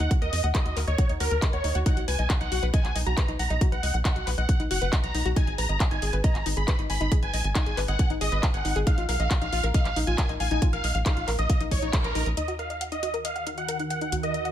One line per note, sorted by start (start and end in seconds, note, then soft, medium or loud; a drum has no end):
0.00 0.13 F#5 medium
0.11 0.13 F#4 medium
0.11 kick loud
0.11 closed hi-hat medium
0.22 0.31 D#2 medium
0.22 0.24 A#4 medium
0.22 0.46 D#5 loud
0.22 closed hi-hat soft
0.33 0.41 F2 loud
0.33 0.35 D#5 medium
0.33 open hi-hat loud
0.44 0.52 D#2 loud
0.44 0.48 F#5 loud
0.44 closed hi-hat soft
0.55 0.59 D#4 loud
0.55 0.79 D#5 loud
0.55 kick loud
0.55 clap loud
0.55 closed hi-hat medium
0.66 0.74 D#2 medium
0.66 0.68 F#4 medium
0.66 closed hi-hat soft
0.77 0.85 D#2 loud
0.77 0.81 A#4 loud
0.77 clap soft
0.77 open hi-hat loud
0.87 0.96 D#2 medium
0.87 1.12 C#5 medium
0.87 0.94 D#5 medium
0.87 closed hi-hat soft
0.98 1.01 F#5 medium
0.98 kick loud
0.98 closed hi-hat medium
1.09 1.18 D#2 medium
1.09 1.13 D#4 medium
1.09 closed hi-hat soft
1.20 1.29 D#2 loud
1.20 1.23 F#4 medium
1.20 1.44 A#4 medium
1.20 open hi-hat loud
1.31 1.40 D#2 medium
1.31 1.35 A#4 loud
1.31 closed hi-hat soft
1.42 1.46 D#5 medium
1.42 kick loud
1.42 clap loud
1.42 closed hi-hat medium
1.53 1.62 D#2 medium
1.53 1.77 C#5 medium
1.53 1.56 F#5 medium
1.53 closed hi-hat soft
1.64 1.73 D#2 loud
1.64 1.67 D#4 medium
1.64 open hi-hat loud
1.75 1.84 D#2 medium
1.75 1.81 F#4 loud
1.75 closed hi-hat soft
1.86 1.88 D#4 loud
1.86 2.02 F#5 loud
1.86 kick loud
1.86 closed hi-hat medium
1.97 2.06 B1 medium
1.97 1.99 F#4 medium
1.97 closed hi-hat soft
2.08 2.17 C#2 medium
2.08 2.10 B4 medium
2.08 2.32 G#5 loud
2.08 open hi-hat loud
2.19 2.28 B1 medium
2.19 2.23 D#5 medium
2.19 closed hi-hat soft
2.30 2.32 F#5 loud
2.30 kick loud
2.30 clap loud
2.30 closed hi-hat medium
2.41 2.49 B1 medium
2.41 2.43 D#4 medium
2.41 2.65 F#5 loud
2.41 closed hi-hat soft
2.52 2.60 B1 loud
2.52 2.54 F#4 loud
2.52 open hi-hat loud
2.63 2.71 B1 medium
2.63 2.67 B4 loud
2.63 closed hi-hat soft
2.74 2.80 D#5 loud
2.74 2.98 G#5 loud
2.74 kick loud
2.74 closed hi-hat medium
2.85 2.93 B1 medium
2.85 2.87 F#5 medium
2.85 clap soft
2.85 closed hi-hat soft
2.95 3.04 B1 loud
2.95 2.98 D#4 medium
2.95 open hi-hat loud
3.06 3.15 B1 medium
3.06 3.11 F#4 medium
3.06 3.31 A#5 medium
3.06 closed hi-hat soft
3.17 3.21 B4 loud
3.17 kick loud
3.17 clap loud
3.17 closed hi-hat medium
3.28 3.37 B1 medium
3.28 3.32 D#4 medium
3.28 closed hi-hat soft
3.39 3.48 B1 loud
3.39 3.43 F#5 loud
3.39 3.63 A#5 medium
3.39 open hi-hat loud
3.50 3.59 B1 medium
3.50 3.54 D#4 loud
3.50 closed hi-hat soft
3.61 3.64 F#4 medium
3.61 kick loud
3.61 closed hi-hat medium
3.72 3.81 B1 medium
3.72 3.75 B4 medium
3.72 3.96 F#5 loud
3.72 closed hi-hat soft
3.83 3.92 C#2 loud
3.83 3.86 D#5 medium
3.83 open hi-hat loud
3.94 4.03 B1 loud
3.94 3.98 F#5 loud
3.94 closed hi-hat soft
4.05 4.09 D#4 loud
4.05 4.29 F#5 medium
4.05 kick loud
4.05 clap loud
4.05 closed hi-hat medium
4.16 4.25 B1 medium
4.16 4.18 F#4 medium
4.16 closed hi-hat soft
4.27 4.36 B1 loud
4.27 4.31 B4 loud
4.27 clap soft
4.27 open hi-hat loud
4.38 4.47 B1 medium
4.38 4.44 D#5 medium
4.38 4.62 F#5 medium
4.38 closed hi-hat soft
4.49 4.51 F#5 medium
4.49 kick loud
4.49 closed hi-hat medium
4.60 4.69 B1 medium
4.60 4.64 D#4 medium
4.60 closed hi-hat soft
4.71 4.79 F#1 loud
4.71 4.73 F#4 medium
4.71 4.95 F#5 loud
4.71 open hi-hat loud
4.82 4.90 F#1 medium
4.82 4.86 B4 loud
4.82 closed hi-hat soft
4.93 4.97 D#5 medium
4.93 kick loud
4.93 clap loud
4.93 closed hi-hat medium
5.04 5.12 B1 medium
5.04 5.06 F#5 medium
5.04 5.28 A#5 loud
5.04 closed hi-hat soft
5.15 5.23 B1 medium
5.15 5.17 D#4 medium
5.15 open hi-hat loud
5.25 5.34 B1 medium
5.25 5.32 F#4 loud
5.25 closed hi-hat soft
5.36 5.39 D#4 loud
5.36 5.53 G#5 loud
5.36 kick loud
5.36 closed hi-hat medium
5.47 5.56 G#1 medium
5.47 5.50 G#4 medium
5.47 closed hi-hat soft
5.58 5.67 A#1 loud
5.58 5.61 B4 medium
5.58 5.82 A#5 loud
5.58 open hi-hat loud
5.69 5.78 G#1 medium
5.69 5.73 D#5 medium
5.69 closed hi-hat soft
5.80 5.83 G#5 loud
5.80 kick loud
5.80 clap loud
5.80 closed hi-hat medium
5.91 6.00 G#1 medium
5.91 5.94 D#4 medium
5.91 6.15 G#5 loud
5.91 closed hi-hat soft
6.02 6.11 G#1 loud
6.02 6.05 G#4 loud
6.02 open hi-hat loud
6.13 6.22 G#1 medium
6.13 6.17 B4 medium
6.13 closed hi-hat soft
6.24 6.30 D#5 loud
6.24 6.48 A#5 loud
6.24 kick loud
6.24 closed hi-hat medium
6.35 6.44 G#1 medium
6.35 6.37 G#5 medium
6.35 clap soft
6.35 closed hi-hat soft
6.46 6.55 G#1 medium
6.46 6.48 D#4 medium
6.46 open hi-hat loud
6.57 6.66 G#1 medium
6.57 6.61 G#4 medium
6.57 6.81 B5 medium
6.57 closed hi-hat soft
6.68 6.72 B4 loud
6.68 kick loud
6.68 clap loud
6.68 closed hi-hat medium
6.79 6.87 G#1 medium
6.79 6.83 D#4 medium
6.79 closed hi-hat soft
6.90 6.98 G#1 loud
6.90 6.94 G#5 loud
6.90 7.14 B5 medium
6.90 open hi-hat loud
7.01 7.09 G#1 medium
7.01 7.05 D#4 loud
7.01 closed hi-hat soft
7.12 7.14 G#4 medium
7.12 kick loud
7.12 closed hi-hat medium
7.23 7.31 G#1 medium
7.23 7.25 B4 medium
7.23 7.47 G#5 medium
7.23 closed hi-hat soft
7.33 7.42 A#1 loud
7.33 7.36 D#5 medium
7.33 open hi-hat loud
7.44 7.53 G#1 medium
7.44 7.49 G#5 loud
7.44 closed hi-hat soft
7.55 7.59 D#4 loud
7.55 7.79 G#5 medium
7.55 kick loud
7.55 clap loud
7.55 closed hi-hat medium
7.66 7.75 G#1 medium
7.66 7.69 G#4 medium
7.66 closed hi-hat soft
7.77 7.86 G#1 loud
7.77 7.81 B4 loud
7.77 clap soft
7.77 open hi-hat loud
7.88 7.97 G#1 medium
7.88 7.94 D#5 medium
7.88 8.12 F#5 medium
7.88 closed hi-hat soft
7.99 8.02 G#5 medium
7.99 kick loud
7.99 closed hi-hat medium
8.10 8.19 G#1 medium
8.10 8.14 D#4 medium
8.10 closed hi-hat soft
8.21 8.30 G#1 loud
8.21 8.24 G#4 medium
8.21 8.45 D#5 loud
8.21 open hi-hat loud
8.32 8.41 G#1 medium
8.32 8.36 B4 loud
8.32 closed hi-hat soft
8.43 8.47 D#5 medium
8.43 kick loud
8.43 clap loud
8.43 closed hi-hat medium
8.54 8.63 G#1 medium
8.54 8.78 F#5 medium
8.54 8.56 G#5 medium
8.54 closed hi-hat soft
8.65 8.74 G#1 loud
8.65 8.67 D#4 medium
8.65 open hi-hat loud
8.76 8.85 G#1 medium
8.76 8.82 G#4 loud
8.76 closed hi-hat soft
8.87 8.89 D#4 loud
8.87 9.03 F5 loud
8.87 kick loud
8.87 closed hi-hat medium
8.98 9.06 A#1 medium
8.98 9.00 F4 medium
8.98 closed hi-hat soft
9.09 9.17 B1 loud
9.09 9.11 A#4 medium
9.09 9.33 F5 loud
9.09 open hi-hat loud
9.20 9.28 A#1 medium
9.20 9.24 D#5 medium
9.20 closed hi-hat soft
9.31 9.33 F5 loud
9.31 kick loud
9.31 clap loud
9.31 closed hi-hat loud
9.41 9.50 A#1 medium
9.41 9.44 D#4 medium
9.41 9.66 F5 loud
9.41 closed hi-hat soft
9.52 9.61 A#1 loud
9.52 9.55 F4 loud
9.52 open hi-hat loud
9.63 9.72 A#1 medium
9.63 9.68 A#4 loud
9.63 closed hi-hat soft
9.74 9.80 D#5 loud
9.74 9.98 F5 loud
9.74 kick loud
9.74 closed hi-hat medium
9.85 9.94 A#1 medium
9.85 9.88 F5 medium
9.85 clap soft
9.85 closed hi-hat soft
9.96 10.05 A#1 loud
9.96 9.99 D#4 medium
9.96 open hi-hat medium
10.07 10.16 A#1 medium
10.07 10.11 F4 medium
10.07 10.31 G#5 medium
10.07 closed hi-hat soft
10.18 10.22 A#4 loud
10.18 kick loud
10.18 clap loud
10.18 closed hi-hat medium
10.29 10.38 A#1 medium
10.29 10.33 D#4 medium
10.29 closed hi-hat soft
10.40 10.49 A#1 loud
10.40 10.44 F5 loud
10.40 10.64 G#5 loud
10.40 open hi-hat loud
10.51 10.60 A#1 medium
10.51 10.55 D#4 loud
10.51 closed hi-hat soft
10.62 10.64 F4 medium
10.62 kick loud
10.62 closed hi-hat medium
10.73 10.82 A#1 medium
10.73 10.75 A#4 medium
10.73 10.97 F5 medium
10.73 closed hi-hat soft
10.84 10.93 B1 loud
10.84 10.86 D#5 medium
10.84 open hi-hat loud
10.95 11.04 A#1 medium
10.95 10.99 F5 loud
10.95 closed hi-hat soft
11.06 11.10 D#4 loud
11.06 11.30 F5 loud
11.06 kick loud
11.06 clap loud
11.06 closed hi-hat medium
11.17 11.25 A#1 medium
11.17 11.19 F4 medium
11.17 closed hi-hat soft
11.28 11.36 A#1 loud
11.28 11.32 A#4 loud
11.28 clap soft
11.28 open hi-hat loud
11.39 11.47 A#1 medium
11.39 11.63 D#5 medium
11.39 11.45 D#5 medium
11.39 closed hi-hat soft
11.50 11.52 F5 medium
11.50 kick loud
11.50 closed hi-hat medium
11.61 11.69 A#1 medium
11.61 11.65 D#4 medium
11.61 closed hi-hat soft
11.71 11.80 A#1 loud
11.71 11.96 C#5 loud
11.71 11.76 D#5 medium
11.71 kick medium
11.71 open hi-hat medium
11.82 11.91 A#1 medium
11.82 11.86 D#4 loud
11.82 closed hi-hat soft
11.93 11.97 A#4 medium
11.93 kick loud
11.93 clap loud
11.93 closed hi-hat medium
12.04 12.13 A#1 medium
12.04 12.28 A#4 medium
12.04 12.07 A#5 medium
12.04 closed hi-hat soft
12.15 12.24 A#1 loud
12.15 12.21 D#4 medium
12.15 open hi-hat loud
12.26 12.35 A#1 medium
12.26 12.29 D#6 medium
12.26 closed hi-hat soft
12.37 14.10 D#2 medium
12.37 14.52 D#3 medium
12.37 12.40 D#4 loud
12.37 14.52 D#4 medium
12.37 14.52 F#4 medium
12.37 14.52 A#4 medium
12.37 12.53 D#5 loud
12.37 closed hi-hat medium
12.48 12.51 F#4 medium
12.48 closed hi-hat soft
12.59 12.61 A#4 medium
12.59 12.83 F5 medium
12.59 closed hi-hat soft
12.70 12.74 D#5 medium
12.70 closed hi-hat soft
12.81 12.83 F#5 loud
12.81 closed hi-hat medium
12.92 12.94 D#4 medium
12.92 13.16 D#5 medium
12.92 closed hi-hat soft
13.03 13.05 F#4 medium
13.03 closed hi-hat medium
13.14 13.18 A#4 medium
13.14 closed hi-hat soft
13.25 13.31 D#5 loud
13.25 13.49 F5 medium
13.25 closed hi-hat medium
13.36 13.38 F#5 medium
13.36 closed hi-hat soft
13.47 13.49 D#4 medium
13.47 closed hi-hat medium
13.58 13.62 F#4 medium
13.58 13.82 F#5 medium
13.58 closed hi-hat soft
13.69 13.73 A#4 loud
13.69 closed hi-hat medium
13.79 13.84 D#4 medium
13.79 closed hi-hat soft
13.90 13.94 F#5 medium
13.90 14.15 F#5 medium
13.90 closed hi-hat medium
14.01 14.05 D#4 loud
14.01 closed hi-hat soft
14.12 14.52 D#2 medium
14.12 14.15 F#4 medium
14.12 closed hi-hat medium
14.23 14.26 A#4 medium
14.23 14.47 D#5 medium
14.23 closed hi-hat soft
14.34 14.37 D#5 medium
14.34 closed hi-hat soft
14.45 14.49 F#5 loud
14.45 closed hi-hat soft